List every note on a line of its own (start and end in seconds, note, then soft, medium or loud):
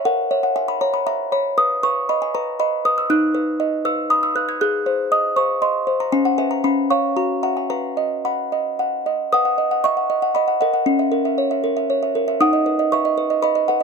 0.05 1.54 A#4 medium
0.05 0.30 F#5 loud
0.31 0.71 C#5 medium
0.31 0.43 E5 medium
0.43 0.56 F#5 medium
0.56 0.96 E5 soft
0.56 0.68 G#5 medium
0.68 0.81 B5 medium
0.81 1.22 C#5 medium
0.81 0.94 A#5 medium
0.94 1.06 B5 medium
1.07 1.47 E5 medium
1.07 1.31 A#5 loud
1.32 1.58 C#5 medium
1.32 1.57 B5 medium
1.58 1.82 B4 medium
1.58 1.82 D#6 loud
1.83 2.24 B4 medium
1.83 2.08 C#6 loud
2.09 2.50 D#5 medium
2.09 2.22 B5 loud
2.22 2.34 G#5 medium
2.35 2.75 B4 medium
2.35 2.59 A#5 loud
2.60 3.00 D#5 medium
2.60 2.84 B5 medium
2.85 3.10 B4 medium
2.85 2.98 D#6 medium
2.98 3.10 E6 medium
3.10 4.57 D#4 medium
3.10 3.82 F#6 loud
3.35 3.75 B4 medium
3.60 4.00 D#5 medium
3.85 4.25 B4 medium
3.85 4.09 E6 loud
4.10 4.51 B5 medium
4.10 4.23 D#6 loud
4.23 4.36 E6 medium
4.35 4.61 B4 medium
4.35 4.48 F#6 medium
4.49 4.61 G#6 medium
4.61 6.09 G#4 medium
4.61 5.09 F#6 loud
4.86 5.26 C5 medium
5.12 5.52 D#5 medium
5.12 5.36 D#6 loud
5.36 5.77 C5 medium
5.36 5.61 C#6 medium
5.62 6.03 D#5 medium
5.62 5.99 C6 loud
5.87 6.13 C5 medium
6.00 6.13 A#5 medium
6.12 6.62 C#4 medium
6.12 6.25 G#5 loud
6.25 6.38 F#5 medium
6.38 6.61 B4 medium
6.38 6.62 E5 medium
6.38 6.51 G#5 medium
6.51 6.64 A#5 medium
6.64 7.15 C#4 medium
6.64 6.89 B5 medium
6.90 7.14 C#5 soft
6.90 7.14 F5 soft
6.90 7.15 C#6 medium
7.16 7.68 F#4 medium
7.16 7.42 A#5 medium
7.43 7.67 E5 soft
7.43 7.67 F#5 soft
7.43 7.56 A#5 medium
7.57 7.70 G#5 medium
7.70 9.28 B4 medium
7.70 8.22 A#5 medium
7.97 8.41 D#5 soft
8.25 8.68 F#5 soft
8.25 9.03 B5 medium
8.52 8.95 D#5 soft
8.79 9.22 F#5 soft
9.06 9.32 D#5 soft
9.32 10.83 B4 medium
9.32 9.44 F#5 medium
9.32 9.82 D#6 loud
9.45 9.66 F#5 medium
9.58 9.79 D#5 medium
9.71 9.92 F#5 medium
9.84 10.05 D#5 medium
9.84 10.32 E5 medium
9.84 10.33 C#6 medium
9.97 10.17 F#5 medium
10.10 10.30 D#5 medium
10.22 10.43 F#5 medium
10.35 10.59 D#5 medium
10.35 10.60 B5 loud
10.48 10.60 F#5 medium
10.61 11.10 A#4 medium
10.61 10.81 D#5 medium
10.61 10.72 F#5 medium
10.74 10.86 F#5 medium
10.86 12.36 C#4 medium
10.99 11.20 E5 medium
11.12 11.32 A#4 medium
11.25 11.46 E5 medium
11.38 11.58 C#5 medium
11.51 11.71 E5 medium
11.64 11.84 A#4 medium
11.77 11.97 E5 medium
11.90 12.10 C#5 medium
12.03 12.22 E5 medium
12.15 12.35 A#4 medium
12.28 12.40 E5 medium
12.41 13.83 D#4 medium
12.41 12.88 F#5 medium
12.41 12.89 D#6 loud
12.53 12.73 D#5 medium
12.66 12.86 B4 medium
12.79 12.99 D#5 medium
12.92 13.12 B4 medium
12.92 13.39 E5 medium
12.92 13.40 C#6 loud
13.05 13.25 D#5 medium
13.18 13.37 B4 medium
13.30 13.42 D#5 medium
13.42 13.62 B4 medium
13.42 13.54 D#5 medium
13.42 13.66 B5 loud
13.55 13.75 D#5 medium
13.68 13.83 B4 medium
13.68 13.83 F#5 medium